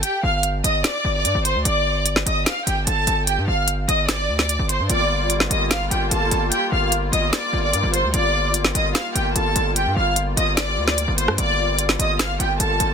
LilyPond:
<<
  \new Staff \with { instrumentName = "Violin section" } { \time 4/4 \key g \minor \tempo 4 = 148 <g' g''>8 <f'' f'''>8 r8 <ees'' ees'''>8 <d'' d'''>8. <d'' d'''>8. <c'' c'''>8 | <d'' d'''>4 r8 <ees'' ees'''>8 <f'' f'''>8 <g' g''>8 <a' a''>4 | <g' g''>8 <f'' f'''>8 r8 <ees'' ees'''>8 <d'' d'''>8. <d'' d'''>8. <c'' c'''>8 | <d'' d'''>4 r8 <ees'' ees'''>8 <f'' f'''>8 <g' g''>8 <a' a''>4 |
<g' g''>8 <f'' f'''>8 r8 <ees'' ees'''>8 <d'' d'''>8. <d'' d'''>8. <c'' c'''>8 | <d'' d'''>4 r8 <ees'' ees'''>8 <f'' f'''>8 <g' g''>8 <a' a''>4 | <g' g''>8 <f'' f'''>8 r8 <ees'' ees'''>8 <d'' d'''>8. <d'' d'''>8. <c'' c'''>8 | <d'' d'''>4 r8 <ees'' ees'''>8 <f'' f'''>8 <g' g''>8 <a' a''>4 | }
  \new Staff \with { instrumentName = "Accordion" } { \time 4/4 \key g \minor r1 | r1 | r1 | <g f'>1~ |
<g f'>1 | <g f'>1~ | <g f'>1~ | <g f'>1 | }
  \new Staff \with { instrumentName = "Accordion" } { \time 4/4 \key g \minor r1 | r1 | r1 | bes1~ |
bes1~ | bes1~ | bes1~ | bes1 | }
  \new Staff \with { instrumentName = "808-style bass" } { \clef bass \time 4/4 \key g \minor r8 g,,4 g,,8 r8 g,,8 g,16 g,,8 d,16 | g,,4. g,,8 r8 g,,8 g,,8 g,,8~ | g,,16 g,16 g,,4 g,,4 d,8. g,,8 g,16 | g,,4. g,,4 g,,8 g,,8 g,,8 |
r8 g,,4 g,,8 r8 g,,8 g,16 g,,8 d,16 | g,,4. g,,8 r8 g,,8 g,,8 g,,8~ | g,,16 g,16 g,,4 g,,4 d,8. g,,8 g,16 | g,,4. g,,4 g,,8 g,,8 g,,8 | }
  \new DrumStaff \with { instrumentName = "Drums" } \drummode { \time 4/4 hh4 hh8 hh8 <hh sn>4 hh8 hh8 | hh4 hh16 sn16 hh8 <hh sn>8 hh8 hh8 hh8 | hh4 hh8 hh8 <hh sn>8. sn16 hh8 hh8 | hh4 hh16 sn16 hh8 <hh sn>8 hh8 hh8 hh8 |
hh4 hh8 hh8 <hh sn>4 hh8 hh8 | hh4 hh16 sn16 hh8 <hh sn>8 hh8 hh8 hh8 | hh4 hh8 hh8 <hh sn>8. sn16 hh8 hh16 ss16 | hh4 hh16 sn16 hh8 <hh sn>8 hh8 hh8 hh8 | }
>>